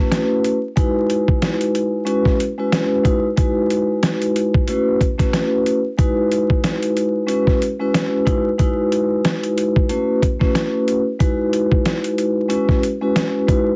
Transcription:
Already playing: vibraphone A3 C#4 E4 F#4
0.00 vibraphone B4
0.12 snare, closed hi-hat
0.44 closed hi-hat
0.76 vibraphone G#3 D#4 E4 F#4 B4, kick, closed hi-hat
1.10 closed hi-hat
1.28 kick
1.42 snare, closed hi-hat
1.61 closed hi-hat
1.75 closed hi-hat
2.05 vibraphone G#3 C#4 E4 F#4 B4, closed hi-hat
2.25 kick, snare
2.40 closed hi-hat
2.58 vibraphone G#3 C#4 E4 F#4 B4
2.72 snare, closed hi-hat
3.03 vibraphone G#3 D#4 E4 F#4 B4, kick, closed hi-hat
3.36 vibraphone G#3 D#4 E4 F#4 B4, kick, closed hi-hat
3.70 closed hi-hat
4.03 snare, closed hi-hat
4.22 closed hi-hat
4.36 closed hi-hat
4.54 kick
4.67 vibraphone A3 C#4 E4 F#4 B4, closed hi-hat
5.01 kick, closed hi-hat
5.18 vibraphone A3 C#4 E4 F#4 B4, kick, snare, closed hi-hat
5.33 snare, closed hi-hat
5.66 closed hi-hat
5.98 vibraphone G#3 D#4 E4 F#4 B4, kick, closed hi-hat
6.32 closed hi-hat
6.50 kick
6.64 snare, closed hi-hat
6.83 closed hi-hat
6.97 closed hi-hat
7.27 vibraphone G#3 C#4 E4 F#4 B4, closed hi-hat
7.47 kick, snare
7.62 closed hi-hat
7.79 vibraphone G#3 C#4 E4 F#4 B4
7.94 snare, closed hi-hat
8.25 vibraphone G#3 D#4 E4 F#4 B4, kick, closed hi-hat
8.58 vibraphone G#3 D#4 E4 F#4 B4, kick, closed hi-hat
8.92 closed hi-hat
9.25 snare, closed hi-hat
9.43 closed hi-hat
9.58 closed hi-hat
9.76 kick
9.89 vibraphone A3 C#4 E4 F#4 B4, closed hi-hat
10.22 kick, closed hi-hat
10.40 vibraphone A3 C#4 E4 F#4 B4, kick, snare
10.55 snare, closed hi-hat
10.88 closed hi-hat
11.19 vibraphone G#3 D#4 E4 F#4 B4, kick, closed hi-hat
11.53 closed hi-hat
11.72 kick
11.85 snare, closed hi-hat
12.04 closed hi-hat
12.18 closed hi-hat
12.48 vibraphone G#3 C#4 E4 F#4 B4, closed hi-hat
12.69 kick, snare
12.83 closed hi-hat
13.01 vibraphone G#3 C#4 E4 F#4 B4
13.16 snare, closed hi-hat
13.47 vibraphone G#3 D#4 E4 F#4 B4, kick, closed hi-hat

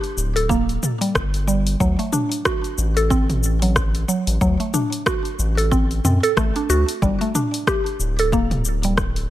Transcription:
0.04 open hi-hat, shaker
0.17 analog synth bass D1, shaker
0.36 synth pluck A4, open hi-hat, shaker
0.49 synth pluck A#3, kick, shaker
0.69 open hi-hat, shaker
0.83 mid tom, shaker
1.01 synth pluck G3, open hi-hat, shaker
1.15 analog synth bass G1, kick, cross-stick, shaker
1.34 open hi-hat, shaker
1.48 synth pluck G3, shaker
1.67 open hi-hat, shaker
1.80 analog synth bass D2, synth pluck F#3, kick, shaker
1.99 synth pluck A3, open hi-hat, shaker
2.13 synth pluck D4, mid tom, shaker
2.32 open hi-hat, shaker
2.45 synth pluck F#4, kick, cross-stick, shaker
2.64 open hi-hat, shaker
2.78 analog synth bass A1, shaker
2.97 synth pluck A4, open hi-hat, shaker
3.10 synth pluck C4, kick, shaker
3.30 mid tom, open hi-hat, shaker
3.43 shaker
3.62 synth pluck F#3, open hi-hat, shaker
3.76 kick, cross-stick, shaker
3.95 open hi-hat, shaker
4.08 synth pluck F#3, shaker
4.27 analog synth bass A1, open hi-hat, shaker
4.41 analog synth bass D2, synth pluck F#3, kick, shaker
4.60 synth pluck A3, open hi-hat, shaker
4.74 synth pluck D4, mid tom, shaker
4.92 open hi-hat, shaker
5.06 synth pluck F#4, kick, cross-stick, shaker
5.25 open hi-hat, shaker
5.39 analog synth bass A1, shaker
5.57 synth pluck A4, open hi-hat, shaker
5.71 synth pluck C4, kick, shaker
5.91 open hi-hat, shaker
6.04 analog synth bass F#2, synth pluck C4, mid tom, shaker
6.23 synth pluck A4, open hi-hat, shaker
6.37 analog synth bass A1, synth pluck A3, kick, cross-stick, shaker
6.56 synth pluck D4, open hi-hat, shaker
6.69 analog synth bass D2, synth pluck F#4, shaker
6.88 open hi-hat, shaker
7.02 analog synth bass G1, synth pluck G3, kick, shaker
7.21 synth pluck A3, open hi-hat, shaker
7.35 synth pluck D4, mid tom, shaker
7.54 open hi-hat, shaker
7.67 synth pluck G4, kick, cross-stick, shaker
7.86 open hi-hat, shaker
7.99 analog synth bass D1, shaker
8.19 synth pluck A4, open hi-hat, shaker
8.32 synth pluck A#3, kick, shaker
8.51 mid tom, open hi-hat, shaker
8.65 shaker
8.83 synth pluck G3, open hi-hat, shaker
8.97 kick, cross-stick, shaker
9.16 open hi-hat, shaker

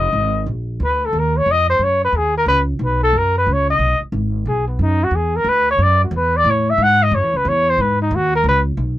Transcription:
Already playing: upright bass F1, trumpet D#5
0.13 upright bass G#1
0.46 upright bass A#1
0.80 upright bass D2
0.84 trumpet B4
1.06 trumpet A4
1.13 upright bass D#2
1.19 trumpet A#4
1.37 trumpet C#5
1.46 upright bass F2
1.51 trumpet D#5
1.70 trumpet C5
1.79 upright bass F#2
1.84 trumpet C#5
2.04 trumpet B4
2.12 upright bass D#2
2.17 trumpet G#4
2.38 trumpet A#4
2.46 upright bass C#2, trumpet B4
2.79 upright bass B1
2.85 trumpet B4
3.03 trumpet A4
3.13 upright bass F#2
3.18 trumpet A#4
3.38 trumpet B4
3.47 upright bass C#2
3.53 trumpet C#5
3.70 trumpet D#5
3.79 upright bass B1
4.01 muted upright bass stroke
4.12 upright bass G#1
4.46 upright bass B1, trumpet G#4
4.68 trumpet B3
4.79 upright bass F#2, trumpet D#4
5.04 trumpet F#4
5.11 upright bass E2
5.16 trumpet G#4
5.36 trumpet A#4
5.44 upright bass D2
5.49 trumpet B4
5.71 trumpet C#5
5.78 upright bass F#2
5.83 trumpet D5
6.04 trumpet F#4
6.11 upright bass E2
6.16 trumpet B4
6.37 trumpet D5
6.44 upright bass A2
6.50 trumpet C#5
6.70 trumpet E5
6.78 upright bass G#2
6.83 trumpet F#5
7.03 trumpet D#5
7.11 upright bass F#2, trumpet C#5
7.23 upright bass E2
7.34 upright bass C#2, trumpet B4
7.45 upright bass E2, trumpet C#5
7.70 trumpet C5
7.78 upright bass G#2, trumpet B4
8.02 trumpet D#4
8.11 upright bass D#2
8.15 trumpet F#4
8.36 trumpet A#4
8.44 upright bass C#2
8.49 trumpet B4
8.77 upright bass B1

